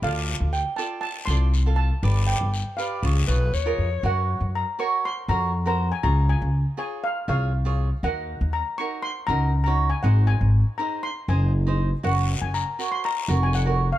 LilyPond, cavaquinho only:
\new Staff \with { instrumentName = "Cavaquinho" } { \time 4/4 \key d \dorian \tempo 4 = 120 <f' a' d''>4 r8 <f' a' d''>8 r8 <f' a' d''>8 r16 <f' a' f''>8 r16 | <g' b' d''>4 r8 <g' b' d''>8 <f' aes' des''>8 <f' aes' des''>8 r16 <f' aes' bes'>8 r16 | \key ges \lydian <ges' bes' des''>4 r8 <ges' bes' des''>8 r8 <ges' bes' des''>8 r16 <ges' bes' c''>8 r16 | <f' aes' des''>4 r8 <f' aes' des''>8 r8 <f' aes' des''>8 r16 <f' aes' des''>8 r16 |
<ees' ges' bes'>4 r8 <ees' ges' bes'>8 r8 <ees' ges' bes'>8 r16 <ees' ges' des''>8 r16 | <ees' aes' c''>4 r8 <ees' aes' c''>8 r8 <ees' aes' c''>8 r16 <ees' aes' c''>8 r16 | <ges' bes' des''>4 r8 <ges' bes' des''>8 r8 <ges' bes' des''>8 r16 <ges' bes' des''>8 r16 | }